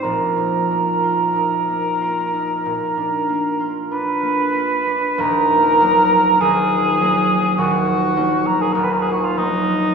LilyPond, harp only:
\new Staff \with { instrumentName = "Harp" } { \time 4/4 \key ees \minor \tempo 4 = 48 <bes,, bes, ees' f'>16 ees'16 bes16 f'16 ees'16 bes16 f'16 ees'16 bes,16 d'16 bes16 f'16 d'16 bes16 f'16 d'16 | <ees,, ees,>8 <ges bes ees'>8 <ees,, ees,>8 <ges bes ees'>8 <ees,, ees,>8 <ges bes ees'>8 <ees,, ees,>8 <ges bes ees'>8 | }